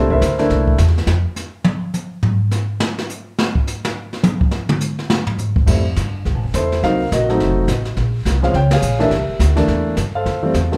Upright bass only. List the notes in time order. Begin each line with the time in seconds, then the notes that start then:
Already playing: C2
0.21 D2
0.50 C2
0.78 E2
1.07 F2
5.67 F2
5.97 G2
6.25 C2
6.34 A1
6.44 F1
6.54 E2
6.83 C2
7.12 A#1
7.40 F1
7.68 A1
7.97 A#1
8.25 C2
8.54 C#2
8.82 A#1
9.11 C2
9.29 muted upright bass stroke
9.39 D2
9.68 E2
9.97 G2
10.26 F2
10.54 E2